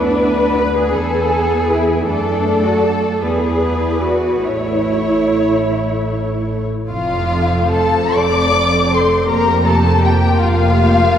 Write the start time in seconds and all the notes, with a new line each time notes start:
Already playing: D2 B3 D4 B4 D5
0.58 B4
0.77 G#4
0.92 E2 B3 G#4 A4 B4
1.70 E4
2.07 F#2 A3 D4 A4 D5
2.65 F#4
2.83 A4
3.23 E2 B3 E4 G#4 B4 D5
4.04 F#4
4.44 A1 A3 E4 C#5
6.89 F1 F2 F4 F5
7.32 C4 A4
7.73 A4 A5
8.14 F1 F2 D5 D6
8.54 C4 A4
8.92 C5 C6
9.28 F1 F2 A#3 G4 A#4 A#5
9.64 A#3 G4 A4 A5
10.01 G4 G5
10.39 F1 F2 F4 F5
10.75 A#3 G4